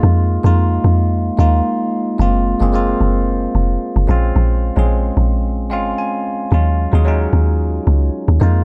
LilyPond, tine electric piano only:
\new Staff \with { instrumentName = "Tine electric piano" } { \time 4/4 \key ees \dorian \tempo 4 = 111 << { r1 | r1 | r2 r8 f''8 aes''4 | r1 | } \\ { <aes bes ees' f'>8 r16 <aes bes ees' f'>4. r16 <aes bes ees' f'>4~ <aes bes ees' f'>16 r16 | <aes bes c' f'>8 r16 <aes bes c' aes'>16 <aes bes c' f'>4. r4 <aes c' des' f'>8~ | <aes c' des' f'>8 r16 <aes c' des' aes'>4. r16 <aes c' des' f'>4~ <aes c' des' f'>16 r16 | <ges aes des' f'>8 r16 <ges aes des' aes'>16 <ges aes des' ees'>4. r4 <aes bes ees' f'>8 | } >> }